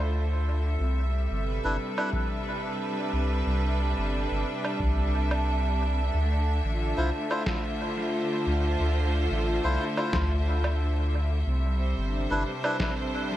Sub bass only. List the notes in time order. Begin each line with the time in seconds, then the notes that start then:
Already playing: D2
0.80 C2
1.31 G1
1.65 G1
3.13 C2
3.46 C2
3.98 G1
4.31 G1
4.80 C2
6.14 D2
6.64 A1
6.98 C2
8.47 D2
8.80 D2
9.31 A1
9.64 C2
10.13 D2
11.47 C2
11.98 G1
12.31 G1